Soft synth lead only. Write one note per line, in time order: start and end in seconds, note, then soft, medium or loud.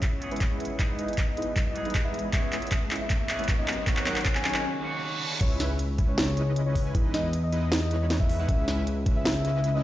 0.12 0.44 C#5 medium
0.50 0.74 C#5 loud
0.98 1.22 D#5 medium
1.27 1.59 D#5 medium
1.66 1.98 D#5 loud
2.04 2.28 E5 medium
2.33 2.57 E5 loud
3.00 3.16 E5 medium
3.20 3.51 E5 loud
3.58 3.82 D#5 loud
4.06 4.30 F#5 loud
4.35 4.64 G#5 loud
5.41 5.65 C#5 loud
6.08 6.24 C#5 medium
6.27 6.59 C#5 loud
6.66 6.90 C#5 loud
7.14 7.38 D#5 medium
7.43 7.75 D#5 medium
7.81 8.13 D#5 loud
8.20 8.44 E5 loud
8.48 8.72 E5 loud
9.16 9.32 E5 medium
9.35 9.75 E5 loud
9.74 9.83 D#5 loud